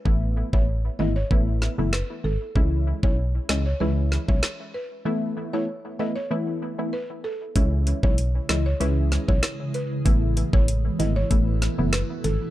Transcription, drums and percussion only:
0.06 kick loud
0.53 kick loud
1.31 kick medium
1.62 snare medium
1.93 cross-stick medium
1.93 snare loud
2.56 kick loud
3.03 kick loud
3.49 cross-stick medium
3.49 snare loud
4.12 snare medium
4.29 kick medium
4.43 cross-stick medium
4.43 snare loud
7.56 kick loud
7.56 closed hi-hat medium
7.87 closed hi-hat medium
8.03 kick loud
8.18 closed hi-hat medium
8.49 cross-stick medium
8.49 snare loud
8.49 closed hi-hat medium
8.81 closed hi-hat medium
9.12 snare medium
9.12 closed hi-hat medium
9.29 kick medium
9.43 cross-stick medium
9.43 snare loud
9.43 closed hi-hat medium
9.74 closed hi-hat medium
10.06 kick loud
10.06 closed hi-hat medium
10.37 closed hi-hat medium
10.53 kick loud
10.68 closed hi-hat medium
11.00 closed hi-hat medium
11.31 kick loud
11.31 closed hi-hat medium
11.62 snare medium
11.62 closed hi-hat medium
11.93 cross-stick medium
11.93 snare loud
11.93 closed hi-hat medium
12.24 closed hi-hat medium

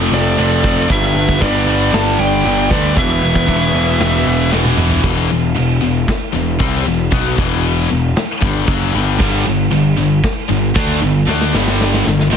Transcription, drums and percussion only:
0.39 china medium
0.64 kick loud
0.90 kick loud
0.90 china medium
1.29 kick medium
1.42 kick loud
1.42 china medium
1.93 snare loud
1.93 china medium
2.45 china medium
2.71 kick medium
2.96 kick loud
2.96 china medium
3.35 kick medium
3.48 kick medium
3.48 china medium
4.00 snare loud
4.00 china medium
4.52 snare medium
4.65 high tom medium
4.78 mid tom medium
4.90 floor tom medium
5.03 kick loud
5.03 crash medium
5.55 crash medium
6.08 kick medium
6.08 snare loud
6.08 crash medium
6.60 kick loud
6.60 crash medium
7.12 kick loud
7.12 crash medium
7.38 kick loud
7.65 crash medium
8.16 snare loud
8.16 crash medium
8.42 kick loud
8.67 kick loud
8.67 crash medium
9.20 kick loud
9.20 crash medium
9.71 crash medium
10.23 kick loud
10.23 snare loud
10.23 crash medium
10.76 kick loud
10.76 crash medium
11.29 snare medium
11.41 snare medium
11.55 snare medium
11.67 snare medium
11.81 snare medium
11.94 snare medium
12.07 snare medium
12.20 snare medium
12.33 snare medium

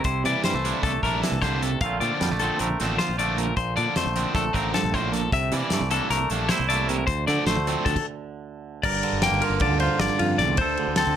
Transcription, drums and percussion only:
0.04 kick loud
0.04 closed hi-hat medium
0.25 closed hi-hat medium
0.44 snare loud
0.44 closed hi-hat medium
0.65 closed hi-hat medium
0.83 kick loud
0.83 closed hi-hat medium
1.03 kick medium
1.03 closed hi-hat medium
1.23 snare medium
1.23 closed hi-hat medium
1.42 kick medium
1.42 snare soft
1.42 closed hi-hat medium
1.63 closed hi-hat medium
1.81 kick loud
1.81 closed hi-hat medium
2.01 closed hi-hat medium
2.21 snare loud
2.21 closed hi-hat medium
2.39 closed hi-hat medium
2.59 closed hi-hat medium
2.80 snare soft
2.80 closed hi-hat medium
2.99 snare loud
2.99 closed hi-hat medium
3.19 closed hi-hat medium
3.38 closed hi-hat medium
3.57 kick loud
3.57 closed hi-hat medium
3.77 closed hi-hat medium
3.96 snare loud
3.96 closed hi-hat medium
4.16 closed hi-hat medium
4.35 kick loud
4.35 snare soft
4.35 closed hi-hat medium
4.54 kick medium
4.54 closed hi-hat medium
4.74 snare loud
4.74 closed hi-hat medium
4.94 kick medium
4.94 closed hi-hat medium
5.13 snare soft
5.13 closed hi-hat medium
5.32 kick loud
5.32 closed hi-hat medium
5.52 closed hi-hat medium
5.70 snare loud
5.70 closed hi-hat medium
5.91 closed hi-hat medium
6.11 snare soft
6.11 closed hi-hat medium
6.30 closed hi-hat medium
6.49 snare loud
6.49 closed hi-hat medium
6.70 closed hi-hat medium
6.89 closed hi-hat medium
7.08 kick loud
7.08 closed hi-hat medium
7.28 snare soft
7.28 closed hi-hat medium
7.47 snare loud
7.47 closed hi-hat medium
7.67 closed hi-hat medium
7.86 kick loud
7.86 closed hi-hat medium
7.96 kick medium
7.96 crash medium
8.84 kick loud
8.84 crash loud
9.03 ride medium
9.22 snare loud
9.22 ride loud
9.42 ride medium
9.60 kick loud
9.60 ride loud
9.80 ride medium
9.99 snare loud
9.99 ride medium
10.19 ride medium
10.39 snare soft
10.39 ride medium
10.57 kick loud
10.57 ride medium
10.77 ride medium
10.96 snare loud
10.96 ride medium

